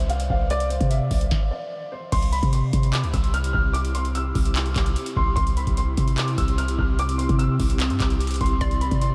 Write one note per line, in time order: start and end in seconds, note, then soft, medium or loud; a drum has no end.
0.00 0.28 C2 loud
0.09 0.26 F5 medium
0.09 closed hi-hat medium
0.20 closed hi-hat medium
0.30 0.79 C2 loud
0.30 0.46 F5 medium
0.30 kick medium
0.50 0.67 D5 loud
0.50 closed hi-hat medium
0.60 closed hi-hat medium
0.70 0.86 C5 medium
0.70 closed hi-hat medium
0.81 1.10 C3 loud
0.81 kick medium
0.81 closed hi-hat medium
0.90 1.47 E5 medium
0.90 closed hi-hat medium
1.11 1.30 C2 loud
1.11 kick medium
1.11 open hi-hat medium
1.21 closed hi-hat medium
1.31 kick loud
1.31 snare medium
1.51 1.89 D5 medium
1.92 2.08 C5 medium
2.12 2.42 C2 loud
2.12 9.15 C3 medium
2.12 9.15 C4 medium
2.12 9.15 E4 medium
2.12 5.33 G4 medium
2.12 2.29 C6 loud
2.12 kick loud
2.12 closed hi-hat medium
2.12 crash loud
2.22 closed hi-hat medium
2.32 2.49 B5 medium
2.32 closed hi-hat medium
2.43 2.72 C3 loud
2.43 kick medium
2.43 closed hi-hat medium
2.53 2.91 C6 medium
2.53 closed hi-hat medium
2.73 3.05 C3 loud
2.73 kick medium
2.73 closed hi-hat medium
2.83 closed hi-hat medium
2.93 3.09 D6 medium
2.93 clap loud
2.93 closed hi-hat medium
3.03 3.13 D2 loud
3.03 closed hi-hat medium
3.13 3.53 C2 loud
3.13 3.30 E6 medium
3.13 kick medium
3.13 closed hi-hat medium
3.24 closed hi-hat medium
3.34 3.50 F6 medium
3.34 closed hi-hat medium
3.44 closed hi-hat medium
3.53 4.32 C2 loud
3.53 3.70 F6 medium
3.53 kick medium
3.73 3.90 D6 loud
3.73 closed hi-hat medium
3.85 closed hi-hat medium
3.95 4.11 C6 medium
3.95 closed hi-hat medium
4.05 closed hi-hat medium
4.15 4.72 E6 medium
4.15 closed hi-hat medium
4.35 4.74 C2 loud
4.35 kick loud
4.35 open hi-hat medium
4.45 closed hi-hat medium
4.56 clap loud
4.56 closed hi-hat medium
4.66 closed hi-hat medium
4.76 4.95 C2 loud
4.76 5.14 D6 medium
4.76 kick loud
4.76 clap medium
4.76 closed hi-hat medium
4.86 closed hi-hat medium
4.96 closed hi-hat medium
5.06 closed hi-hat medium
5.16 5.36 C2 loud
5.16 5.33 C6 medium
5.16 kick medium
5.36 5.66 C2 loud
5.36 9.15 G4 medium
5.36 5.52 C6 loud
5.36 kick loud
5.36 closed hi-hat medium
5.47 closed hi-hat medium
5.57 5.73 B5 medium
5.57 closed hi-hat medium
5.67 5.96 C2 loud
5.67 kick loud
5.67 closed hi-hat medium
5.77 6.16 C6 medium
5.77 closed hi-hat medium
5.97 6.36 C3 loud
5.97 kick medium
5.97 closed hi-hat medium
6.08 closed hi-hat medium
6.18 6.34 D6 medium
6.18 clap loud
6.18 closed hi-hat medium
6.28 closed hi-hat medium
6.38 6.77 C2 loud
6.38 6.54 E6 medium
6.38 kick medium
6.38 closed hi-hat medium
6.48 closed hi-hat medium
6.58 6.74 F6 medium
6.58 closed hi-hat medium
6.68 closed hi-hat medium
6.78 7.27 C2 loud
6.78 6.95 F6 medium
6.78 kick medium
6.99 7.15 D6 loud
6.99 closed hi-hat medium
7.09 closed hi-hat medium
7.18 7.35 C6 medium
7.18 closed hi-hat medium
7.29 7.58 C3 loud
7.29 kick loud
7.29 closed hi-hat medium
7.39 7.96 E6 medium
7.39 closed hi-hat medium
7.60 7.92 C2 loud
7.60 kick medium
7.60 open hi-hat medium
7.70 closed hi-hat medium
7.80 clap loud
7.80 closed hi-hat medium
7.90 8.00 G2 loud
7.90 closed hi-hat medium
8.00 8.39 C2 loud
8.00 8.38 D6 medium
8.00 kick medium
8.00 clap medium
8.00 closed hi-hat medium
8.10 closed hi-hat medium
8.20 closed hi-hat medium
8.27 closed hi-hat medium
8.31 closed hi-hat medium
8.34 closed hi-hat medium
8.36 closed hi-hat medium
8.41 8.60 C2 loud
8.41 8.57 C6 medium
8.41 kick medium
8.41 closed hi-hat medium
8.46 closed hi-hat medium
8.61 8.90 C2 loud
8.61 9.15 D5 loud
8.61 8.77 C6 loud
8.61 kick loud
8.61 closed hi-hat medium
8.71 closed hi-hat medium
8.81 8.97 B5 medium
8.81 closed hi-hat medium
8.91 9.15 C3 loud
8.91 kick loud
8.91 closed hi-hat medium
9.01 9.15 C6 medium
9.01 closed hi-hat medium